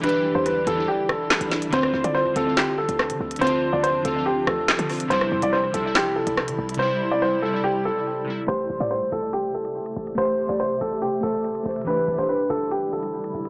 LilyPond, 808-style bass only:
\new Staff \with { instrumentName = "808-style bass" } { \clef bass \time 4/4 \key a \minor \tempo 4 = 142 e,,8. e,8. e,8 r8 e,,8. b,,8. | d,8 d,16 d8 c,16 d,8. r8 d,8 d16 d,8 | d,8. d,8 f,16 d,4 d,8. d8. | c,8 e,16 c,8. c,4~ c,16 c,8 e16 c,8 |
r1 | a,,8 a,,16 a,8 g,,16 a,,4~ a,,16 r8. a,,8 | a,,8. a,,8 c,16 a,,4 a,,4 a,,8 | e,,8 g,,16 e,,8. e,,2 e,,8 | }